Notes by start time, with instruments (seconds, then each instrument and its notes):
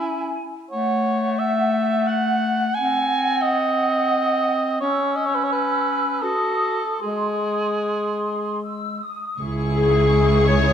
Already playing: clarinet C#4, cor anglais E4, flute section G#5
0.70 clarinet A3, cor anglais C#5, flute section F#5
1.39 cor anglais E5
2.07 cor anglais F#5
2.75 clarinet C4, cor anglais G#5
3.42 cor anglais D#5
4.81 clarinet C#4, cor anglais C#5, flute section E6
5.16 cor anglais D#5
5.26 cor anglais C#5
5.35 cor anglais B4
5.44 cor anglais C#5
5.53 cor anglais B4
6.22 clarinet F#4, cor anglais A4, flute section D#6
6.99 clarinet G#3, cor anglais G#4, flute section C6
7.82 flute section C6
8.63 flute section E6
9.03 flute section D#6
9.40 double bass section C#2, cello section C#2, viola section E4 G#4, violin section C#6
9.75 clarinet G#4, violin section G#4
10.47 violin section C#5, clarinet C#5